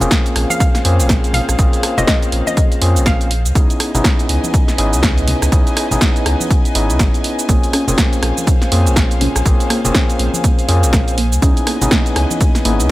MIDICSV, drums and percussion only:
0, 0, Header, 1, 2, 480
1, 0, Start_track
1, 0, Tempo, 491803
1, 1549, Time_signature, 4, 2, 24, 8
1, 12601, End_track
2, 0, Start_track
2, 0, Title_t, "Drums"
2, 4, Note_on_c, 9, 64, 90
2, 13, Note_on_c, 9, 42, 38
2, 14, Note_on_c, 9, 69, 64
2, 102, Note_off_c, 9, 64, 0
2, 106, Note_on_c, 9, 38, 121
2, 109, Note_off_c, 9, 42, 0
2, 109, Note_on_c, 9, 36, 113
2, 109, Note_on_c, 9, 42, 79
2, 111, Note_off_c, 9, 69, 0
2, 111, Note_on_c, 9, 69, 55
2, 204, Note_off_c, 9, 38, 0
2, 206, Note_off_c, 9, 36, 0
2, 207, Note_off_c, 9, 42, 0
2, 209, Note_off_c, 9, 69, 0
2, 253, Note_on_c, 9, 42, 55
2, 254, Note_on_c, 9, 69, 33
2, 349, Note_on_c, 9, 37, 77
2, 349, Note_on_c, 9, 46, 109
2, 350, Note_off_c, 9, 42, 0
2, 352, Note_off_c, 9, 69, 0
2, 447, Note_off_c, 9, 37, 0
2, 447, Note_off_c, 9, 46, 0
2, 487, Note_on_c, 9, 63, 61
2, 494, Note_on_c, 9, 69, 65
2, 585, Note_off_c, 9, 63, 0
2, 589, Note_on_c, 9, 36, 124
2, 589, Note_on_c, 9, 42, 80
2, 590, Note_off_c, 9, 69, 0
2, 590, Note_on_c, 9, 69, 56
2, 686, Note_off_c, 9, 42, 0
2, 687, Note_off_c, 9, 36, 0
2, 688, Note_off_c, 9, 69, 0
2, 729, Note_on_c, 9, 38, 37
2, 732, Note_on_c, 9, 42, 55
2, 734, Note_on_c, 9, 69, 33
2, 827, Note_off_c, 9, 38, 0
2, 829, Note_on_c, 9, 46, 105
2, 830, Note_off_c, 9, 42, 0
2, 831, Note_off_c, 9, 69, 0
2, 926, Note_off_c, 9, 46, 0
2, 972, Note_on_c, 9, 42, 38
2, 974, Note_on_c, 9, 69, 66
2, 1066, Note_on_c, 9, 38, 122
2, 1069, Note_off_c, 9, 42, 0
2, 1069, Note_on_c, 9, 36, 119
2, 1069, Note_on_c, 9, 42, 81
2, 1070, Note_off_c, 9, 69, 0
2, 1070, Note_on_c, 9, 69, 51
2, 1163, Note_off_c, 9, 38, 0
2, 1166, Note_off_c, 9, 42, 0
2, 1167, Note_off_c, 9, 36, 0
2, 1168, Note_off_c, 9, 69, 0
2, 1212, Note_on_c, 9, 42, 54
2, 1213, Note_on_c, 9, 69, 34
2, 1302, Note_on_c, 9, 64, 94
2, 1309, Note_off_c, 9, 42, 0
2, 1309, Note_on_c, 9, 46, 108
2, 1311, Note_off_c, 9, 69, 0
2, 1399, Note_off_c, 9, 64, 0
2, 1406, Note_off_c, 9, 46, 0
2, 1452, Note_on_c, 9, 37, 62
2, 1452, Note_on_c, 9, 42, 39
2, 1454, Note_on_c, 9, 69, 68
2, 1549, Note_off_c, 9, 42, 0
2, 1549, Note_on_c, 9, 36, 121
2, 1549, Note_on_c, 9, 42, 77
2, 1550, Note_off_c, 9, 37, 0
2, 1550, Note_off_c, 9, 69, 0
2, 1550, Note_on_c, 9, 69, 53
2, 1646, Note_off_c, 9, 42, 0
2, 1647, Note_off_c, 9, 36, 0
2, 1648, Note_off_c, 9, 69, 0
2, 1691, Note_on_c, 9, 42, 57
2, 1693, Note_on_c, 9, 69, 33
2, 1788, Note_on_c, 9, 37, 69
2, 1788, Note_on_c, 9, 46, 106
2, 1789, Note_off_c, 9, 42, 0
2, 1791, Note_off_c, 9, 69, 0
2, 1886, Note_off_c, 9, 37, 0
2, 1886, Note_off_c, 9, 46, 0
2, 1930, Note_on_c, 9, 64, 108
2, 1931, Note_on_c, 9, 42, 38
2, 1933, Note_on_c, 9, 69, 63
2, 2025, Note_on_c, 9, 38, 127
2, 2027, Note_off_c, 9, 64, 0
2, 2028, Note_off_c, 9, 42, 0
2, 2028, Note_on_c, 9, 42, 82
2, 2029, Note_on_c, 9, 36, 124
2, 2030, Note_off_c, 9, 69, 0
2, 2030, Note_on_c, 9, 69, 53
2, 2123, Note_off_c, 9, 38, 0
2, 2126, Note_off_c, 9, 42, 0
2, 2127, Note_off_c, 9, 36, 0
2, 2127, Note_off_c, 9, 69, 0
2, 2171, Note_on_c, 9, 42, 52
2, 2173, Note_on_c, 9, 69, 31
2, 2268, Note_on_c, 9, 46, 106
2, 2269, Note_off_c, 9, 42, 0
2, 2271, Note_off_c, 9, 69, 0
2, 2365, Note_off_c, 9, 46, 0
2, 2410, Note_on_c, 9, 63, 56
2, 2413, Note_on_c, 9, 69, 64
2, 2507, Note_off_c, 9, 63, 0
2, 2508, Note_on_c, 9, 42, 81
2, 2509, Note_on_c, 9, 36, 127
2, 2510, Note_off_c, 9, 69, 0
2, 2510, Note_on_c, 9, 69, 54
2, 2606, Note_off_c, 9, 42, 0
2, 2607, Note_off_c, 9, 36, 0
2, 2607, Note_off_c, 9, 69, 0
2, 2652, Note_on_c, 9, 42, 54
2, 2653, Note_on_c, 9, 69, 32
2, 2748, Note_on_c, 9, 46, 110
2, 2749, Note_off_c, 9, 42, 0
2, 2751, Note_off_c, 9, 69, 0
2, 2846, Note_off_c, 9, 46, 0
2, 2891, Note_on_c, 9, 42, 35
2, 2893, Note_on_c, 9, 69, 63
2, 2986, Note_on_c, 9, 38, 124
2, 2989, Note_off_c, 9, 42, 0
2, 2989, Note_on_c, 9, 36, 121
2, 2989, Note_on_c, 9, 42, 77
2, 2990, Note_off_c, 9, 69, 0
2, 2990, Note_on_c, 9, 69, 55
2, 3083, Note_off_c, 9, 38, 0
2, 3086, Note_off_c, 9, 36, 0
2, 3086, Note_off_c, 9, 42, 0
2, 3088, Note_off_c, 9, 69, 0
2, 3132, Note_on_c, 9, 42, 55
2, 3133, Note_on_c, 9, 69, 32
2, 3228, Note_on_c, 9, 46, 114
2, 3229, Note_off_c, 9, 42, 0
2, 3231, Note_off_c, 9, 69, 0
2, 3326, Note_off_c, 9, 46, 0
2, 3372, Note_on_c, 9, 42, 38
2, 3374, Note_on_c, 9, 69, 63
2, 3469, Note_off_c, 9, 42, 0
2, 3469, Note_on_c, 9, 36, 119
2, 3469, Note_on_c, 9, 42, 72
2, 3470, Note_off_c, 9, 69, 0
2, 3470, Note_on_c, 9, 69, 53
2, 3566, Note_off_c, 9, 36, 0
2, 3566, Note_off_c, 9, 42, 0
2, 3568, Note_off_c, 9, 69, 0
2, 3612, Note_on_c, 9, 42, 51
2, 3614, Note_on_c, 9, 69, 33
2, 3709, Note_on_c, 9, 37, 75
2, 3709, Note_on_c, 9, 46, 104
2, 3710, Note_off_c, 9, 42, 0
2, 3711, Note_off_c, 9, 69, 0
2, 3807, Note_off_c, 9, 37, 0
2, 3807, Note_off_c, 9, 46, 0
2, 3853, Note_on_c, 9, 42, 36
2, 3854, Note_on_c, 9, 64, 94
2, 3854, Note_on_c, 9, 69, 65
2, 3946, Note_on_c, 9, 38, 121
2, 3949, Note_off_c, 9, 42, 0
2, 3949, Note_on_c, 9, 36, 127
2, 3949, Note_on_c, 9, 42, 77
2, 3951, Note_off_c, 9, 69, 0
2, 3951, Note_on_c, 9, 69, 53
2, 3952, Note_off_c, 9, 64, 0
2, 4044, Note_off_c, 9, 38, 0
2, 4046, Note_off_c, 9, 36, 0
2, 4047, Note_off_c, 9, 42, 0
2, 4048, Note_off_c, 9, 69, 0
2, 4093, Note_on_c, 9, 42, 49
2, 4095, Note_on_c, 9, 69, 31
2, 4189, Note_on_c, 9, 46, 115
2, 4190, Note_off_c, 9, 42, 0
2, 4192, Note_off_c, 9, 69, 0
2, 4287, Note_off_c, 9, 46, 0
2, 4332, Note_on_c, 9, 63, 68
2, 4334, Note_on_c, 9, 69, 60
2, 4429, Note_off_c, 9, 63, 0
2, 4429, Note_on_c, 9, 36, 127
2, 4429, Note_on_c, 9, 42, 77
2, 4431, Note_off_c, 9, 69, 0
2, 4431, Note_on_c, 9, 69, 52
2, 4526, Note_off_c, 9, 36, 0
2, 4527, Note_off_c, 9, 42, 0
2, 4529, Note_off_c, 9, 69, 0
2, 4569, Note_on_c, 9, 38, 37
2, 4572, Note_on_c, 9, 42, 52
2, 4574, Note_on_c, 9, 69, 32
2, 4667, Note_off_c, 9, 38, 0
2, 4669, Note_on_c, 9, 46, 113
2, 4670, Note_off_c, 9, 42, 0
2, 4672, Note_off_c, 9, 69, 0
2, 4767, Note_off_c, 9, 46, 0
2, 4812, Note_on_c, 9, 42, 35
2, 4814, Note_on_c, 9, 69, 61
2, 4906, Note_on_c, 9, 38, 118
2, 4909, Note_off_c, 9, 42, 0
2, 4909, Note_on_c, 9, 36, 118
2, 4909, Note_on_c, 9, 42, 74
2, 4911, Note_off_c, 9, 69, 0
2, 4911, Note_on_c, 9, 69, 52
2, 5004, Note_off_c, 9, 38, 0
2, 5006, Note_off_c, 9, 36, 0
2, 5007, Note_off_c, 9, 42, 0
2, 5009, Note_off_c, 9, 69, 0
2, 5052, Note_on_c, 9, 42, 53
2, 5054, Note_on_c, 9, 69, 31
2, 5146, Note_on_c, 9, 64, 85
2, 5149, Note_on_c, 9, 46, 115
2, 5150, Note_off_c, 9, 42, 0
2, 5152, Note_off_c, 9, 69, 0
2, 5243, Note_off_c, 9, 64, 0
2, 5247, Note_off_c, 9, 46, 0
2, 5292, Note_on_c, 9, 37, 66
2, 5292, Note_on_c, 9, 42, 38
2, 5294, Note_on_c, 9, 69, 64
2, 5389, Note_off_c, 9, 42, 0
2, 5389, Note_on_c, 9, 36, 120
2, 5389, Note_on_c, 9, 42, 74
2, 5390, Note_off_c, 9, 37, 0
2, 5391, Note_off_c, 9, 69, 0
2, 5391, Note_on_c, 9, 69, 53
2, 5486, Note_off_c, 9, 36, 0
2, 5487, Note_off_c, 9, 42, 0
2, 5489, Note_off_c, 9, 69, 0
2, 5533, Note_on_c, 9, 42, 51
2, 5534, Note_on_c, 9, 69, 33
2, 5629, Note_on_c, 9, 37, 79
2, 5629, Note_on_c, 9, 46, 106
2, 5630, Note_off_c, 9, 42, 0
2, 5632, Note_off_c, 9, 69, 0
2, 5727, Note_off_c, 9, 37, 0
2, 5727, Note_off_c, 9, 46, 0
2, 5770, Note_on_c, 9, 64, 94
2, 5773, Note_on_c, 9, 42, 35
2, 5774, Note_on_c, 9, 69, 66
2, 5866, Note_on_c, 9, 38, 116
2, 5868, Note_off_c, 9, 64, 0
2, 5869, Note_off_c, 9, 42, 0
2, 5869, Note_on_c, 9, 36, 124
2, 5869, Note_on_c, 9, 42, 76
2, 5871, Note_off_c, 9, 69, 0
2, 5871, Note_on_c, 9, 69, 55
2, 5964, Note_off_c, 9, 38, 0
2, 5966, Note_off_c, 9, 36, 0
2, 5967, Note_off_c, 9, 42, 0
2, 5968, Note_off_c, 9, 69, 0
2, 6012, Note_on_c, 9, 42, 48
2, 6014, Note_on_c, 9, 69, 32
2, 6109, Note_on_c, 9, 37, 80
2, 6109, Note_on_c, 9, 46, 114
2, 6110, Note_off_c, 9, 42, 0
2, 6112, Note_off_c, 9, 69, 0
2, 6207, Note_off_c, 9, 37, 0
2, 6207, Note_off_c, 9, 46, 0
2, 6252, Note_on_c, 9, 63, 62
2, 6254, Note_on_c, 9, 69, 66
2, 6349, Note_off_c, 9, 63, 0
2, 6349, Note_on_c, 9, 36, 126
2, 6350, Note_on_c, 9, 42, 72
2, 6351, Note_off_c, 9, 69, 0
2, 6351, Note_on_c, 9, 69, 53
2, 6446, Note_off_c, 9, 36, 0
2, 6447, Note_off_c, 9, 42, 0
2, 6449, Note_off_c, 9, 69, 0
2, 6493, Note_on_c, 9, 42, 51
2, 6494, Note_on_c, 9, 69, 32
2, 6589, Note_on_c, 9, 46, 114
2, 6590, Note_off_c, 9, 42, 0
2, 6592, Note_off_c, 9, 69, 0
2, 6687, Note_off_c, 9, 46, 0
2, 6732, Note_on_c, 9, 42, 35
2, 6734, Note_on_c, 9, 69, 63
2, 6826, Note_on_c, 9, 38, 110
2, 6829, Note_off_c, 9, 42, 0
2, 6829, Note_on_c, 9, 36, 119
2, 6829, Note_on_c, 9, 42, 73
2, 6831, Note_off_c, 9, 69, 0
2, 6831, Note_on_c, 9, 69, 54
2, 6924, Note_off_c, 9, 38, 0
2, 6926, Note_off_c, 9, 36, 0
2, 6927, Note_off_c, 9, 42, 0
2, 6928, Note_off_c, 9, 69, 0
2, 6972, Note_on_c, 9, 42, 52
2, 6974, Note_on_c, 9, 69, 33
2, 7069, Note_on_c, 9, 46, 111
2, 7070, Note_off_c, 9, 42, 0
2, 7071, Note_off_c, 9, 69, 0
2, 7167, Note_off_c, 9, 46, 0
2, 7212, Note_on_c, 9, 42, 36
2, 7213, Note_on_c, 9, 69, 64
2, 7308, Note_off_c, 9, 42, 0
2, 7308, Note_on_c, 9, 42, 77
2, 7309, Note_on_c, 9, 36, 113
2, 7310, Note_off_c, 9, 69, 0
2, 7310, Note_on_c, 9, 69, 55
2, 7406, Note_off_c, 9, 36, 0
2, 7406, Note_off_c, 9, 42, 0
2, 7408, Note_off_c, 9, 69, 0
2, 7452, Note_on_c, 9, 42, 51
2, 7453, Note_on_c, 9, 69, 34
2, 7548, Note_on_c, 9, 37, 76
2, 7548, Note_on_c, 9, 46, 102
2, 7549, Note_off_c, 9, 42, 0
2, 7551, Note_off_c, 9, 69, 0
2, 7646, Note_off_c, 9, 37, 0
2, 7646, Note_off_c, 9, 46, 0
2, 7687, Note_on_c, 9, 64, 86
2, 7692, Note_on_c, 9, 42, 35
2, 7693, Note_on_c, 9, 69, 70
2, 7785, Note_off_c, 9, 64, 0
2, 7786, Note_on_c, 9, 38, 115
2, 7789, Note_off_c, 9, 42, 0
2, 7789, Note_on_c, 9, 36, 115
2, 7789, Note_on_c, 9, 42, 79
2, 7791, Note_off_c, 9, 69, 0
2, 7791, Note_on_c, 9, 69, 54
2, 7884, Note_off_c, 9, 38, 0
2, 7886, Note_off_c, 9, 36, 0
2, 7887, Note_off_c, 9, 42, 0
2, 7888, Note_off_c, 9, 69, 0
2, 7932, Note_on_c, 9, 42, 49
2, 7934, Note_on_c, 9, 69, 33
2, 8029, Note_on_c, 9, 37, 86
2, 8029, Note_on_c, 9, 46, 110
2, 8030, Note_off_c, 9, 42, 0
2, 8031, Note_off_c, 9, 69, 0
2, 8126, Note_off_c, 9, 37, 0
2, 8126, Note_off_c, 9, 46, 0
2, 8174, Note_on_c, 9, 69, 64
2, 8179, Note_on_c, 9, 63, 56
2, 8269, Note_on_c, 9, 36, 126
2, 8269, Note_on_c, 9, 42, 74
2, 8271, Note_off_c, 9, 69, 0
2, 8271, Note_on_c, 9, 69, 55
2, 8277, Note_off_c, 9, 63, 0
2, 8366, Note_off_c, 9, 36, 0
2, 8367, Note_off_c, 9, 42, 0
2, 8369, Note_off_c, 9, 69, 0
2, 8409, Note_on_c, 9, 38, 36
2, 8412, Note_on_c, 9, 42, 50
2, 8414, Note_on_c, 9, 69, 33
2, 8507, Note_off_c, 9, 38, 0
2, 8509, Note_on_c, 9, 46, 105
2, 8510, Note_off_c, 9, 42, 0
2, 8512, Note_off_c, 9, 69, 0
2, 8606, Note_off_c, 9, 46, 0
2, 8652, Note_on_c, 9, 42, 34
2, 8654, Note_on_c, 9, 69, 64
2, 8746, Note_on_c, 9, 38, 112
2, 8749, Note_off_c, 9, 42, 0
2, 8749, Note_on_c, 9, 36, 119
2, 8749, Note_on_c, 9, 42, 75
2, 8751, Note_off_c, 9, 69, 0
2, 8751, Note_on_c, 9, 69, 54
2, 8844, Note_off_c, 9, 38, 0
2, 8846, Note_off_c, 9, 36, 0
2, 8847, Note_off_c, 9, 42, 0
2, 8849, Note_off_c, 9, 69, 0
2, 8892, Note_on_c, 9, 42, 52
2, 8894, Note_on_c, 9, 69, 34
2, 8989, Note_on_c, 9, 46, 108
2, 8990, Note_off_c, 9, 42, 0
2, 8991, Note_on_c, 9, 64, 83
2, 8992, Note_off_c, 9, 69, 0
2, 9087, Note_off_c, 9, 46, 0
2, 9089, Note_off_c, 9, 64, 0
2, 9133, Note_on_c, 9, 37, 71
2, 9133, Note_on_c, 9, 42, 36
2, 9134, Note_on_c, 9, 69, 68
2, 9229, Note_on_c, 9, 36, 113
2, 9230, Note_off_c, 9, 37, 0
2, 9230, Note_off_c, 9, 42, 0
2, 9230, Note_on_c, 9, 42, 76
2, 9231, Note_off_c, 9, 69, 0
2, 9231, Note_on_c, 9, 69, 55
2, 9326, Note_off_c, 9, 36, 0
2, 9327, Note_off_c, 9, 42, 0
2, 9329, Note_off_c, 9, 69, 0
2, 9373, Note_on_c, 9, 42, 55
2, 9374, Note_on_c, 9, 69, 37
2, 9470, Note_off_c, 9, 42, 0
2, 9470, Note_on_c, 9, 37, 84
2, 9470, Note_on_c, 9, 46, 98
2, 9472, Note_off_c, 9, 69, 0
2, 9567, Note_off_c, 9, 37, 0
2, 9567, Note_off_c, 9, 46, 0
2, 9610, Note_on_c, 9, 64, 90
2, 9613, Note_on_c, 9, 42, 38
2, 9615, Note_on_c, 9, 69, 69
2, 9707, Note_on_c, 9, 38, 114
2, 9708, Note_off_c, 9, 64, 0
2, 9709, Note_on_c, 9, 36, 115
2, 9710, Note_off_c, 9, 42, 0
2, 9710, Note_on_c, 9, 42, 80
2, 9711, Note_off_c, 9, 69, 0
2, 9711, Note_on_c, 9, 69, 60
2, 9804, Note_off_c, 9, 38, 0
2, 9806, Note_off_c, 9, 36, 0
2, 9807, Note_off_c, 9, 42, 0
2, 9809, Note_off_c, 9, 69, 0
2, 9853, Note_on_c, 9, 42, 52
2, 9855, Note_on_c, 9, 69, 34
2, 9950, Note_on_c, 9, 46, 104
2, 9951, Note_off_c, 9, 42, 0
2, 9952, Note_off_c, 9, 69, 0
2, 10047, Note_off_c, 9, 46, 0
2, 10089, Note_on_c, 9, 63, 63
2, 10095, Note_on_c, 9, 69, 69
2, 10187, Note_off_c, 9, 63, 0
2, 10189, Note_on_c, 9, 36, 117
2, 10189, Note_on_c, 9, 42, 80
2, 10191, Note_off_c, 9, 69, 0
2, 10191, Note_on_c, 9, 69, 58
2, 10287, Note_off_c, 9, 36, 0
2, 10287, Note_off_c, 9, 42, 0
2, 10289, Note_off_c, 9, 69, 0
2, 10332, Note_on_c, 9, 42, 54
2, 10334, Note_on_c, 9, 69, 35
2, 10429, Note_on_c, 9, 46, 102
2, 10430, Note_off_c, 9, 42, 0
2, 10432, Note_off_c, 9, 69, 0
2, 10527, Note_off_c, 9, 46, 0
2, 10572, Note_on_c, 9, 42, 35
2, 10574, Note_on_c, 9, 69, 70
2, 10666, Note_on_c, 9, 38, 113
2, 10669, Note_off_c, 9, 42, 0
2, 10669, Note_on_c, 9, 36, 119
2, 10669, Note_on_c, 9, 42, 74
2, 10670, Note_off_c, 9, 69, 0
2, 10670, Note_on_c, 9, 69, 57
2, 10763, Note_off_c, 9, 38, 0
2, 10766, Note_off_c, 9, 42, 0
2, 10767, Note_off_c, 9, 36, 0
2, 10768, Note_off_c, 9, 69, 0
2, 10812, Note_on_c, 9, 42, 53
2, 10813, Note_on_c, 9, 69, 36
2, 10909, Note_off_c, 9, 42, 0
2, 10909, Note_on_c, 9, 46, 106
2, 10911, Note_off_c, 9, 69, 0
2, 11007, Note_off_c, 9, 46, 0
2, 11052, Note_on_c, 9, 42, 37
2, 11053, Note_on_c, 9, 69, 70
2, 11149, Note_off_c, 9, 42, 0
2, 11149, Note_on_c, 9, 36, 111
2, 11149, Note_on_c, 9, 42, 81
2, 11151, Note_off_c, 9, 69, 0
2, 11151, Note_on_c, 9, 69, 59
2, 11246, Note_off_c, 9, 42, 0
2, 11247, Note_off_c, 9, 36, 0
2, 11248, Note_off_c, 9, 69, 0
2, 11292, Note_on_c, 9, 42, 57
2, 11294, Note_on_c, 9, 69, 35
2, 11389, Note_on_c, 9, 37, 77
2, 11389, Note_on_c, 9, 46, 97
2, 11390, Note_off_c, 9, 42, 0
2, 11391, Note_off_c, 9, 69, 0
2, 11486, Note_off_c, 9, 37, 0
2, 11486, Note_off_c, 9, 46, 0
2, 11532, Note_on_c, 9, 42, 38
2, 11533, Note_on_c, 9, 64, 91
2, 11533, Note_on_c, 9, 69, 72
2, 11625, Note_on_c, 9, 38, 122
2, 11628, Note_off_c, 9, 42, 0
2, 11628, Note_on_c, 9, 42, 82
2, 11629, Note_on_c, 9, 36, 112
2, 11630, Note_off_c, 9, 64, 0
2, 11630, Note_off_c, 9, 69, 0
2, 11630, Note_on_c, 9, 69, 59
2, 11722, Note_off_c, 9, 38, 0
2, 11725, Note_off_c, 9, 42, 0
2, 11727, Note_off_c, 9, 36, 0
2, 11727, Note_off_c, 9, 69, 0
2, 11771, Note_on_c, 9, 42, 53
2, 11773, Note_on_c, 9, 69, 36
2, 11868, Note_on_c, 9, 37, 82
2, 11868, Note_on_c, 9, 46, 98
2, 11869, Note_off_c, 9, 42, 0
2, 11871, Note_off_c, 9, 69, 0
2, 11966, Note_off_c, 9, 37, 0
2, 11966, Note_off_c, 9, 46, 0
2, 12013, Note_on_c, 9, 63, 60
2, 12013, Note_on_c, 9, 69, 72
2, 12108, Note_on_c, 9, 42, 81
2, 12109, Note_on_c, 9, 36, 121
2, 12110, Note_off_c, 9, 63, 0
2, 12110, Note_off_c, 9, 69, 0
2, 12110, Note_on_c, 9, 69, 59
2, 12206, Note_off_c, 9, 42, 0
2, 12207, Note_off_c, 9, 36, 0
2, 12208, Note_off_c, 9, 69, 0
2, 12248, Note_on_c, 9, 38, 36
2, 12251, Note_on_c, 9, 42, 53
2, 12253, Note_on_c, 9, 69, 36
2, 12346, Note_off_c, 9, 38, 0
2, 12348, Note_on_c, 9, 46, 106
2, 12349, Note_off_c, 9, 42, 0
2, 12351, Note_off_c, 9, 69, 0
2, 12446, Note_off_c, 9, 46, 0
2, 12491, Note_on_c, 9, 42, 39
2, 12493, Note_on_c, 9, 69, 72
2, 12589, Note_off_c, 9, 42, 0
2, 12590, Note_off_c, 9, 69, 0
2, 12601, End_track
0, 0, End_of_file